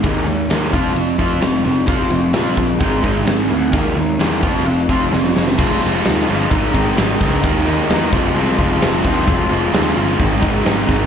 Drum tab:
CC |----------------|----------------|----------------|x-x-x-x-x-x-x-x-|
RD |x-x-x-x-x-x-x-x-|x-x-x-x-x-x-x-x-|x-x-x-x-x-x-----|----------------|
SD |----o-------o---|----o-------o---|----o-------oooo|----o----o--o-o-|
BD |o-----o---o-----|o-----o-o-o-----|o-----o---o-----|o-------o-o---o-|

CC |x-x-x-x-x-x-x-x-|x-x-x-x-x-x-x-x-|
RD |----------------|----------------|
SD |----o----o--o---|----o----o--o-o-|
BD |o-----o---o---o-|o-------o-o---o-|